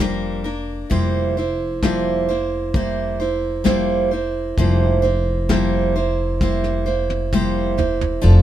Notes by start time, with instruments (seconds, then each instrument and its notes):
Already playing: upright bass F1
0.00 steel-string acoustic guitar F3 G3 A#3 D4 A#4
0.44 steel-string acoustic guitar A#3 D4 A#4
0.90 upright bass F1, steel-string acoustic guitar F3 G3 A#3 E4 C5, kick
1.37 steel-string acoustic guitar A#3 E4 C5
1.83 steel-string acoustic guitar F3 G3 A#3 E4 C5, kick, snare
2.29 steel-string acoustic guitar A#3 E4 C5
2.74 steel-string acoustic guitar G3 A#3 E4 C5, kick
3.20 steel-string acoustic guitar A#3 E4 C5
3.64 steel-string acoustic guitar F3 G3 A#3 E4 C5, kick, snare
4.11 steel-string acoustic guitar A#3 E4 C5
4.57 upright bass F1, steel-string acoustic guitar F3 G3 A#3 E4 C5, kick
5.02 steel-string acoustic guitar A#3 E4 C5
5.49 steel-string acoustic guitar F3 G3 A#3 E4 C5, kick, snare
5.96 steel-string acoustic guitar A#3 E4 C5
6.41 steel-string acoustic guitar G3 A#3 E4 C5, kick, snare
6.64 snare
6.86 steel-string acoustic guitar A#3 E4 C5
7.10 high tom
7.33 steel-string acoustic guitar F3 G3 A#3 E4 C5, kick, mid tom
7.78 steel-string acoustic guitar A#3 E4 C5, floor tom
8.01 floor tom
8.22 upright bass F1, steel-string acoustic guitar F3 D4 F4 A4